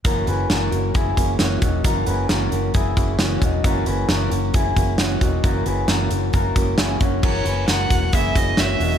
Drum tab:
CC |--------|--------|--------|--------|
HH |xxxxxxxx|xxxxxxxx|xxxxxxxx|xxxxxxxx|
SD |--o---o-|--o---o-|--o---o-|--o---o-|
BD |o---oo-o|o---oo-o|o---oo-o|o---oo-o|

CC |x-------|
HH |-xxxxxxo|
SD |--o---o-|
BD |o--ooo--|